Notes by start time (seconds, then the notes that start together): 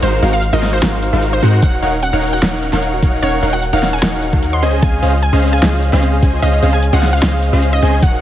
0.02 G#1 G#3 D#4 F#4 A#4 C5 F5, closed hi-hat
0.13 D#4
0.22 G#1 G#3 C4 D#4 F#4 A#4 C5 F5, closed hi-hat
0.33 F#4 F5
0.42 D#4, closed hi-hat
0.53 G#1 G#3 D#4 F4 F#4 A#4 C5 D#5 F5
0.63 snare, closed hi-hat
0.68 closed hi-hat
0.73 D#4 C5, closed hi-hat
0.78 closed hi-hat
0.82 G#1 G#3 C4 D#4 F#4 A#4 C5 F5, snare, closed hi-hat
0.93 F#4
1.03 D#4, closed hi-hat
1.13 G#1 G#3 D#4 F4 F#4 A#4 C5 F5
1.23 closed hi-hat
1.33 D#4 C5
1.42 G#2 G#3 C4 D#4 F#4 A#4 C5 F#5, closed hi-hat
1.53 F#4
1.62 D#1 D#4 A#4 C#5 F5 F#5, kick, closed hi-hat
1.73 F#4
1.82 D#1 D#4 A#4 C#5 F5 F#5, closed hi-hat
1.93 D#4
2.03 C#4 F#5, closed hi-hat
2.13 D#1 D#4 A#4 C#5 F5 F#5
2.23 D#4, closed hi-hat
2.28 closed hi-hat
2.33 F#4 F#5, closed hi-hat
2.38 closed hi-hat
2.42 D#1 D#4 A#4 C#5 F5 F#5, snare, closed hi-hat
2.53 D#4
2.63 C#4, closed hi-hat
2.73 D#1 D#4 A#4 C#5 F5 F#5, snare
2.82 D#4, closed hi-hat
2.93 F#4
3.02 D#1 D#4 A#4 C#5 F5 F#5, kick, closed hi-hat
3.13 D#4
3.22 D#1 C#4 D#4 A#4 C#5 F5 F#5, closed hi-hat
3.33 A#4
3.42 D#1 D#4 A#4 C#5 F5 F#5, closed hi-hat
3.53 F#4 F#5
3.63 closed hi-hat
3.73 D#1 D#4 A#4 C#5 F5 F#5
3.83 C#4, snare, closed hi-hat
3.88 closed hi-hat
3.93 A#4 G#5, closed hi-hat
3.98 closed hi-hat
4.03 D#1 D#4 A#4 C#5 F5 F#5, snare, closed hi-hat
4.13 F#4
4.23 D#4, closed hi-hat
4.33 D#2 D#4 F#4 A#4 C#5 F5 F#5, kick
4.43 A#4, closed hi-hat
4.53 D#5 C6
4.62 C#2 C#4 G#4 C5 D#5 G#5, closed hi-hat
4.73 G#4
4.83 C#2 C4 C#4 G#4 C5 D#5 F5 G#5, kick, closed hi-hat
4.93 G#4
5.02 C#2 C#4 G#4 C5 D#5 F5, closed hi-hat
5.13 F4
5.22 G#5, closed hi-hat
5.33 C#2 C#4 G#4 C5 D#5 F5
5.43 C4, closed hi-hat
5.48 closed hi-hat
5.53 G#4 G#5, closed hi-hat
5.58 closed hi-hat
5.62 C#2 C#4 G#4 C5 D#5 F5, snare, closed hi-hat
5.73 F4
5.83 closed hi-hat
5.93 C#2 C#4 G#4 C5 D#5 F5, snare
6.03 C4, closed hi-hat
6.13 G#4
6.22 C#2 C#4 G#4 C5 D#5 G#5, kick, closed hi-hat
6.33 F4
6.42 C#2 C#4 G#4 C5 D#5 F5, closed hi-hat
6.53 C#4
6.62 C#2 C4 C#4 G#4 C5 D#5 F5, closed hi-hat
6.73 G#4 G#5
6.83 C#4, closed hi-hat
6.93 C#2 C#4 F4 G#4 C5 D#5 F5 F#5
7.03 snare, closed hi-hat
7.08 closed hi-hat
7.13 C#4 F5, closed hi-hat
7.18 closed hi-hat
7.22 C#2 C4 C#4 G#4 C5 D#5 F5, snare, closed hi-hat
7.33 G#4
7.42 C#4, closed hi-hat
7.53 C#2 C#4 F4 G#4 C5 D#5 F5
7.62 closed hi-hat
7.73 C#4 D#5
7.82 C#2 C4 C#4 G#4 C5 D#5 G#5, closed hi-hat
7.93 G#4
8.02 D#4 A#4 C#5 F5 F#5, kick, closed hi-hat
8.13 F#4